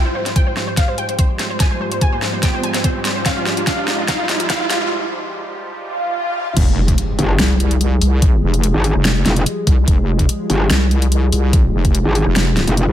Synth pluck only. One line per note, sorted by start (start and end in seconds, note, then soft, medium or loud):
0.05 0.14 C5 medium
0.15 0.25 C5 medium
0.26 0.35 C5 medium
0.36 0.45 G5 medium
0.47 0.55 C5 medium
0.57 0.66 C5 medium
0.67 0.76 C5 medium
0.77 0.87 F5 medium
0.88 0.97 C5 medium
0.98 1.07 G5 medium
1.09 1.17 C5 medium
1.19 1.28 C5 medium
1.39 1.49 C5 medium
1.50 1.59 C5 medium
1.60 1.69 G#5 loud
1.71 1.79 C5 medium
1.81 1.90 C5 medium
1.92 2.00 C5 medium
2.02 2.11 G#5 loud
2.12 2.21 C5 medium
2.22 2.32 C5 medium
2.33 2.42 C5 medium
2.43 2.52 G5 medium
2.54 2.62 C5 medium
2.64 2.73 G#5 medium
2.74 2.83 C5 medium
2.84 2.94 C5 medium
3.05 3.14 C5 medium
3.16 3.24 C5 medium
3.26 3.35 F5 medium
3.37 3.45 F4 medium
3.46 3.56 F4 medium
3.57 3.66 F4 medium
3.67 3.77 F5 medium
3.78 3.87 F4 medium
3.88 3.97 F4 medium
3.99 4.07 F4 medium
4.08 4.18 F5 loud
4.19 4.28 F4 medium
4.29 4.38 F4 medium
4.40 4.48 F4 medium
4.50 4.59 F5 loud
4.60 4.69 F4 medium
4.70 4.80 F4 medium
4.81 4.89 F4 medium